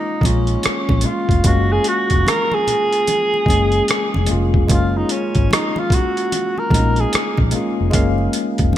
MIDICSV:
0, 0, Header, 1, 6, 480
1, 0, Start_track
1, 0, Key_signature, 6, "major"
1, 0, Tempo, 810811
1, 857, Time_signature, 4, 2, 24, 8
1, 5195, End_track
2, 0, Start_track
2, 0, Title_t, "Tenor saxophone"
2, 0, Program_c, 0, 66
2, 0, Note_on_c, 0, 63, 75
2, 153, Note_on_c, 0, 61, 81
2, 162, Note_off_c, 0, 63, 0
2, 628, Note_on_c, 0, 65, 83
2, 637, Note_off_c, 0, 61, 0
2, 867, Note_on_c, 0, 66, 89
2, 876, Note_off_c, 0, 65, 0
2, 1018, Note_on_c, 0, 68, 94
2, 1027, Note_off_c, 0, 66, 0
2, 1113, Note_on_c, 0, 66, 98
2, 1122, Note_off_c, 0, 68, 0
2, 1356, Note_on_c, 0, 70, 94
2, 1365, Note_off_c, 0, 66, 0
2, 1504, Note_on_c, 0, 68, 116
2, 1513, Note_off_c, 0, 70, 0
2, 2696, Note_off_c, 0, 68, 0
2, 2795, Note_on_c, 0, 65, 84
2, 2944, Note_on_c, 0, 63, 76
2, 2953, Note_off_c, 0, 65, 0
2, 3027, Note_on_c, 0, 61, 86
2, 3036, Note_off_c, 0, 63, 0
2, 3262, Note_off_c, 0, 61, 0
2, 3276, Note_on_c, 0, 63, 81
2, 3430, Note_on_c, 0, 65, 89
2, 3439, Note_off_c, 0, 63, 0
2, 3516, Note_on_c, 0, 66, 93
2, 3524, Note_off_c, 0, 65, 0
2, 3900, Note_on_c, 0, 70, 91
2, 3909, Note_off_c, 0, 66, 0
2, 4146, Note_on_c, 0, 68, 78
2, 4155, Note_off_c, 0, 70, 0
2, 4377, Note_off_c, 0, 68, 0
2, 5195, End_track
3, 0, Start_track
3, 0, Title_t, "Tine electric piano"
3, 0, Program_c, 1, 4
3, 0, Control_c, 1, 64, 127
3, 0, Note_on_c, 1, 56, 75
3, 0, Note_on_c, 1, 58, 65
3, 0, Note_on_c, 1, 61, 63
3, 0, Note_on_c, 1, 65, 81
3, 129, Note_off_c, 1, 56, 0
3, 129, Note_on_c, 1, 56, 62
3, 137, Note_off_c, 1, 58, 0
3, 137, Note_on_c, 1, 58, 60
3, 149, Note_off_c, 1, 61, 0
3, 149, Note_on_c, 1, 61, 61
3, 155, Note_off_c, 1, 65, 0
3, 155, Note_on_c, 1, 65, 69
3, 549, Note_off_c, 1, 56, 0
3, 553, Note_off_c, 1, 58, 0
3, 559, Note_off_c, 1, 61, 0
3, 562, Note_off_c, 1, 65, 0
3, 609, Note_on_c, 1, 56, 53
3, 619, Note_on_c, 1, 58, 51
3, 628, Note_on_c, 1, 61, 50
3, 636, Note_on_c, 1, 65, 64
3, 821, Note_off_c, 1, 56, 0
3, 826, Note_off_c, 1, 58, 0
3, 830, Note_off_c, 1, 61, 0
3, 834, Note_off_c, 1, 65, 0
3, 848, Note_on_c, 1, 56, 69
3, 858, Note_on_c, 1, 58, 64
3, 868, Note_on_c, 1, 61, 70
3, 876, Note_on_c, 1, 77, 81
3, 1658, Note_off_c, 1, 56, 0
3, 1662, Note_off_c, 1, 58, 0
3, 1668, Note_off_c, 1, 61, 0
3, 1671, Note_off_c, 1, 77, 0
3, 2047, Note_on_c, 1, 56, 80
3, 2055, Note_on_c, 1, 58, 72
3, 2064, Note_on_c, 1, 61, 72
3, 2072, Note_on_c, 1, 68, 93
3, 2468, Note_off_c, 1, 56, 0
3, 2472, Note_off_c, 1, 58, 0
3, 2476, Note_off_c, 1, 61, 0
3, 2480, Note_off_c, 1, 68, 0
3, 2526, Note_on_c, 1, 56, 68
3, 2536, Note_on_c, 1, 58, 58
3, 2546, Note_on_c, 1, 61, 62
3, 2552, Note_on_c, 1, 65, 79
3, 2740, Note_off_c, 1, 56, 0
3, 2744, Note_off_c, 1, 58, 0
3, 2749, Note_off_c, 1, 61, 0
3, 2753, Note_off_c, 1, 65, 0
3, 2767, Note_on_c, 1, 56, 71
3, 2775, Note_on_c, 1, 58, 67
3, 2786, Note_on_c, 1, 61, 73
3, 2792, Note_on_c, 1, 65, 78
3, 3577, Note_off_c, 1, 56, 0
3, 3581, Note_off_c, 1, 58, 0
3, 3587, Note_off_c, 1, 61, 0
3, 3589, Note_off_c, 1, 65, 0
3, 3966, Note_on_c, 1, 56, 66
3, 3978, Note_on_c, 1, 57, 50
3, 3986, Note_on_c, 1, 61, 58
3, 3995, Note_on_c, 1, 63, 78
3, 4014, Note_on_c, 1, 58, 65
3, 4026, Note_off_c, 1, 57, 0
3, 4387, Note_off_c, 1, 56, 0
3, 4398, Note_off_c, 1, 61, 0
3, 4402, Note_off_c, 1, 63, 0
3, 4411, Note_off_c, 1, 58, 0
3, 4448, Note_on_c, 1, 56, 72
3, 4455, Note_on_c, 1, 58, 68
3, 4463, Note_on_c, 1, 61, 64
3, 4472, Note_on_c, 1, 65, 75
3, 4661, Note_off_c, 1, 56, 0
3, 4664, Note_off_c, 1, 58, 0
3, 4668, Note_off_c, 1, 61, 0
3, 4673, Note_off_c, 1, 65, 0
3, 4678, Note_on_c, 1, 56, 89
3, 4688, Note_on_c, 1, 58, 85
3, 4696, Note_on_c, 1, 61, 76
3, 4706, Note_on_c, 1, 77, 101
3, 5195, Note_off_c, 1, 56, 0
3, 5195, Note_off_c, 1, 58, 0
3, 5195, Note_off_c, 1, 61, 0
3, 5195, Note_off_c, 1, 77, 0
3, 5195, End_track
4, 0, Start_track
4, 0, Title_t, "Fingered electric bass"
4, 0, Program_c, 2, 33
4, 133, Note_on_c, 2, 34, 75
4, 327, Note_off_c, 2, 34, 0
4, 533, Note_on_c, 2, 34, 85
4, 602, Note_off_c, 2, 34, 0
4, 771, Note_on_c, 2, 29, 70
4, 841, Note_off_c, 2, 29, 0
4, 862, Note_on_c, 2, 30, 90
4, 1052, Note_off_c, 2, 30, 0
4, 1252, Note_on_c, 2, 29, 76
4, 1322, Note_off_c, 2, 29, 0
4, 2055, Note_on_c, 2, 30, 77
4, 2248, Note_off_c, 2, 30, 0
4, 2461, Note_on_c, 2, 29, 86
4, 2527, Note_off_c, 2, 29, 0
4, 2550, Note_on_c, 2, 29, 84
4, 2786, Note_off_c, 2, 29, 0
4, 2786, Note_on_c, 2, 30, 98
4, 2974, Note_off_c, 2, 30, 0
4, 3177, Note_on_c, 2, 32, 88
4, 3244, Note_off_c, 2, 32, 0
4, 3976, Note_on_c, 2, 34, 81
4, 4169, Note_off_c, 2, 34, 0
4, 4378, Note_on_c, 2, 34, 90
4, 4445, Note_off_c, 2, 34, 0
4, 4620, Note_on_c, 2, 29, 72
4, 4687, Note_off_c, 2, 29, 0
4, 4704, Note_on_c, 2, 30, 92
4, 4893, Note_off_c, 2, 30, 0
4, 5093, Note_on_c, 2, 29, 84
4, 5162, Note_off_c, 2, 29, 0
4, 5195, End_track
5, 0, Start_track
5, 0, Title_t, "Muted fingered electric bass strokes"
5, 389, Note_on_c, 9, 29, 41
5, 448, Note_off_c, 9, 29, 0
5, 4228, Note_on_c, 9, 29, 39
5, 4287, Note_off_c, 9, 29, 0
5, 5195, End_track
6, 0, Start_track
6, 0, Title_t, "Drums"
6, 126, Note_on_c, 9, 36, 87
6, 137, Note_on_c, 9, 63, 64
6, 148, Note_on_c, 9, 42, 65
6, 185, Note_off_c, 9, 36, 0
6, 196, Note_off_c, 9, 63, 0
6, 208, Note_off_c, 9, 42, 0
6, 279, Note_on_c, 9, 42, 30
6, 338, Note_off_c, 9, 42, 0
6, 374, Note_on_c, 9, 42, 66
6, 376, Note_on_c, 9, 62, 27
6, 388, Note_on_c, 9, 37, 100
6, 433, Note_off_c, 9, 42, 0
6, 435, Note_off_c, 9, 62, 0
6, 447, Note_off_c, 9, 37, 0
6, 526, Note_on_c, 9, 36, 90
6, 527, Note_on_c, 9, 62, 31
6, 527, Note_on_c, 9, 63, 65
6, 585, Note_off_c, 9, 36, 0
6, 587, Note_off_c, 9, 62, 0
6, 587, Note_off_c, 9, 63, 0
6, 599, Note_on_c, 9, 42, 70
6, 615, Note_on_c, 9, 64, 74
6, 658, Note_off_c, 9, 42, 0
6, 674, Note_off_c, 9, 64, 0
6, 762, Note_on_c, 9, 36, 82
6, 774, Note_on_c, 9, 42, 32
6, 822, Note_off_c, 9, 36, 0
6, 833, Note_off_c, 9, 42, 0
6, 852, Note_on_c, 9, 42, 81
6, 855, Note_on_c, 9, 36, 107
6, 856, Note_on_c, 9, 64, 61
6, 911, Note_off_c, 9, 42, 0
6, 914, Note_off_c, 9, 36, 0
6, 915, Note_off_c, 9, 64, 0
6, 1091, Note_on_c, 9, 42, 63
6, 1150, Note_off_c, 9, 42, 0
6, 1242, Note_on_c, 9, 42, 33
6, 1247, Note_on_c, 9, 36, 70
6, 1301, Note_off_c, 9, 42, 0
6, 1306, Note_off_c, 9, 36, 0
6, 1341, Note_on_c, 9, 63, 70
6, 1348, Note_on_c, 9, 42, 72
6, 1351, Note_on_c, 9, 37, 106
6, 1400, Note_off_c, 9, 63, 0
6, 1407, Note_off_c, 9, 42, 0
6, 1411, Note_off_c, 9, 37, 0
6, 1489, Note_on_c, 9, 63, 71
6, 1548, Note_off_c, 9, 63, 0
6, 1583, Note_on_c, 9, 64, 59
6, 1585, Note_on_c, 9, 42, 70
6, 1642, Note_off_c, 9, 64, 0
6, 1644, Note_off_c, 9, 42, 0
6, 1732, Note_on_c, 9, 42, 34
6, 1791, Note_off_c, 9, 42, 0
6, 1820, Note_on_c, 9, 42, 71
6, 1823, Note_on_c, 9, 62, 27
6, 1823, Note_on_c, 9, 63, 59
6, 1879, Note_off_c, 9, 42, 0
6, 1883, Note_off_c, 9, 62, 0
6, 1883, Note_off_c, 9, 63, 0
6, 1976, Note_on_c, 9, 62, 26
6, 2035, Note_off_c, 9, 62, 0
6, 2048, Note_on_c, 9, 36, 76
6, 2062, Note_on_c, 9, 63, 67
6, 2072, Note_on_c, 9, 42, 58
6, 2108, Note_off_c, 9, 36, 0
6, 2121, Note_off_c, 9, 63, 0
6, 2131, Note_off_c, 9, 42, 0
6, 2201, Note_on_c, 9, 42, 28
6, 2260, Note_off_c, 9, 42, 0
6, 2298, Note_on_c, 9, 42, 74
6, 2305, Note_on_c, 9, 62, 29
6, 2312, Note_on_c, 9, 37, 100
6, 2357, Note_off_c, 9, 42, 0
6, 2365, Note_off_c, 9, 62, 0
6, 2372, Note_off_c, 9, 37, 0
6, 2452, Note_on_c, 9, 62, 31
6, 2452, Note_on_c, 9, 63, 72
6, 2512, Note_off_c, 9, 62, 0
6, 2512, Note_off_c, 9, 63, 0
6, 2525, Note_on_c, 9, 42, 72
6, 2538, Note_on_c, 9, 64, 69
6, 2584, Note_off_c, 9, 42, 0
6, 2597, Note_off_c, 9, 64, 0
6, 2687, Note_on_c, 9, 36, 82
6, 2747, Note_off_c, 9, 36, 0
6, 2773, Note_on_c, 9, 62, 31
6, 2773, Note_on_c, 9, 64, 63
6, 2779, Note_on_c, 9, 42, 77
6, 2780, Note_on_c, 9, 36, 100
6, 2832, Note_off_c, 9, 62, 0
6, 2832, Note_off_c, 9, 64, 0
6, 2838, Note_off_c, 9, 42, 0
6, 2839, Note_off_c, 9, 36, 0
6, 3015, Note_on_c, 9, 42, 66
6, 3074, Note_off_c, 9, 42, 0
6, 3165, Note_on_c, 9, 42, 34
6, 3170, Note_on_c, 9, 36, 77
6, 3224, Note_off_c, 9, 42, 0
6, 3229, Note_off_c, 9, 36, 0
6, 3260, Note_on_c, 9, 62, 30
6, 3260, Note_on_c, 9, 63, 62
6, 3272, Note_on_c, 9, 42, 82
6, 3275, Note_on_c, 9, 37, 117
6, 3319, Note_off_c, 9, 62, 0
6, 3319, Note_off_c, 9, 63, 0
6, 3331, Note_off_c, 9, 42, 0
6, 3335, Note_off_c, 9, 37, 0
6, 3410, Note_on_c, 9, 63, 73
6, 3469, Note_off_c, 9, 63, 0
6, 3494, Note_on_c, 9, 36, 99
6, 3503, Note_on_c, 9, 64, 57
6, 3505, Note_on_c, 9, 42, 65
6, 3553, Note_off_c, 9, 36, 0
6, 3562, Note_off_c, 9, 64, 0
6, 3564, Note_off_c, 9, 42, 0
6, 3653, Note_on_c, 9, 42, 31
6, 3713, Note_off_c, 9, 42, 0
6, 3743, Note_on_c, 9, 42, 73
6, 3743, Note_on_c, 9, 62, 26
6, 3743, Note_on_c, 9, 63, 52
6, 3802, Note_off_c, 9, 62, 0
6, 3802, Note_off_c, 9, 63, 0
6, 3803, Note_off_c, 9, 42, 0
6, 3893, Note_on_c, 9, 62, 27
6, 3952, Note_off_c, 9, 62, 0
6, 3969, Note_on_c, 9, 36, 90
6, 3972, Note_on_c, 9, 63, 65
6, 3992, Note_on_c, 9, 42, 67
6, 4028, Note_off_c, 9, 36, 0
6, 4031, Note_off_c, 9, 63, 0
6, 4051, Note_off_c, 9, 42, 0
6, 4122, Note_on_c, 9, 42, 31
6, 4181, Note_off_c, 9, 42, 0
6, 4220, Note_on_c, 9, 42, 78
6, 4234, Note_on_c, 9, 37, 101
6, 4279, Note_off_c, 9, 42, 0
6, 4293, Note_off_c, 9, 37, 0
6, 4366, Note_on_c, 9, 62, 30
6, 4366, Note_on_c, 9, 63, 66
6, 4370, Note_on_c, 9, 36, 84
6, 4425, Note_off_c, 9, 62, 0
6, 4425, Note_off_c, 9, 63, 0
6, 4429, Note_off_c, 9, 36, 0
6, 4447, Note_on_c, 9, 42, 65
6, 4453, Note_on_c, 9, 64, 73
6, 4506, Note_off_c, 9, 42, 0
6, 4512, Note_off_c, 9, 64, 0
6, 4683, Note_on_c, 9, 62, 28
6, 4683, Note_on_c, 9, 64, 60
6, 4697, Note_on_c, 9, 36, 106
6, 4697, Note_on_c, 9, 42, 81
6, 4742, Note_off_c, 9, 62, 0
6, 4742, Note_off_c, 9, 64, 0
6, 4756, Note_off_c, 9, 42, 0
6, 4757, Note_off_c, 9, 36, 0
6, 4843, Note_on_c, 9, 62, 24
6, 4902, Note_off_c, 9, 62, 0
6, 4932, Note_on_c, 9, 42, 68
6, 4992, Note_off_c, 9, 42, 0
6, 5080, Note_on_c, 9, 42, 31
6, 5086, Note_on_c, 9, 36, 74
6, 5139, Note_off_c, 9, 42, 0
6, 5146, Note_off_c, 9, 36, 0
6, 5167, Note_on_c, 9, 63, 68
6, 5195, Note_off_c, 9, 63, 0
6, 5195, End_track
0, 0, End_of_file